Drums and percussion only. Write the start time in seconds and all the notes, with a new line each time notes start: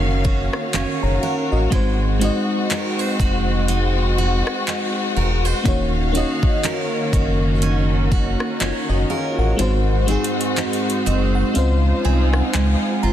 0.25 kick
0.53 cross-stick
0.73 clap, closed hi-hat
1.72 kick, closed hi-hat
2.21 closed hi-hat
2.70 clap, closed hi-hat
3.20 kick, closed hi-hat
3.68 closed hi-hat
4.47 cross-stick
4.67 clap, closed hi-hat
5.66 kick, closed hi-hat
6.15 closed hi-hat
6.43 kick
6.64 clap, closed hi-hat
7.13 kick, closed hi-hat
7.62 closed hi-hat
8.12 kick
8.40 cross-stick
8.60 clap, closed hi-hat
9.59 closed hi-hat
10.08 closed hi-hat
10.24 closed hi-hat
10.41 closed hi-hat
10.57 clap, closed hi-hat
10.73 closed hi-hat
10.90 closed hi-hat
11.07 closed hi-hat
11.55 closed hi-hat
12.33 cross-stick
12.54 clap, closed hi-hat